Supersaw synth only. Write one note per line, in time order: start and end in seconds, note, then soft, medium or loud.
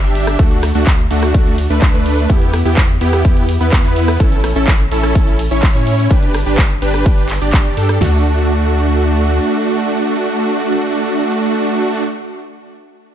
0.03 0.36 D4 loud
0.03 0.36 G4 medium
0.03 0.36 E5 loud
0.39 0.65 A3 medium
0.39 0.65 D4 medium
0.39 0.65 F#4 loud
0.75 0.91 A3 loud
0.75 0.91 D4 medium
0.75 0.91 F#4 loud
1.11 1.55 A3 loud
1.11 1.55 D4 medium
1.11 1.55 F#4 loud
1.70 1.91 A3 medium
1.70 1.91 D4 medium
1.70 1.91 B4 loud
1.94 2.27 A3 loud
1.94 2.27 D4 medium
1.94 2.27 B4 loud
2.30 2.55 B3 medium
2.30 2.55 E4 medium
2.30 2.55 G4 loud
2.65 2.81 B3 medium
2.65 2.81 E4 medium
2.65 2.81 G4 loud
3.01 3.46 B3 medium
3.01 3.46 E4 medium
3.01 3.46 G4 loud
3.61 3.82 B3 medium
3.61 3.82 E4 medium
3.61 3.82 B4 loud
3.84 4.17 B3 medium
3.84 4.17 E4 medium
3.84 4.17 B4 loud
4.20 4.46 C#4 medium
4.20 4.46 E4 medium
4.20 4.46 A4 loud
4.56 4.72 C#4 loud
4.56 4.72 E4 medium
4.56 4.72 A4 loud
4.92 5.36 C#4 loud
4.92 5.36 E4 medium
4.92 5.36 A4 loud
5.51 5.72 C#4 medium
5.51 5.72 E4 medium
5.51 5.72 C#5 loud
5.75 6.08 C#4 medium
5.75 6.08 E4 medium
5.75 6.08 C#5 loud
6.11 6.36 D4 medium
6.11 6.36 G4 medium
6.11 6.36 B4 loud
6.46 6.62 D4 loud
6.46 6.62 G4 medium
6.46 6.62 B4 loud
6.82 7.27 D4 loud
6.82 7.27 G4 medium
6.82 7.27 B4 loud
7.41 7.74 D4 medium
7.41 7.74 G4 medium
7.41 7.74 D5 medium
7.77 7.98 D4 medium
7.77 7.98 G4 medium
7.77 7.98 A4 medium
8.01 12.03 A3 medium
8.01 12.03 D4 medium
8.01 12.03 F#4 loud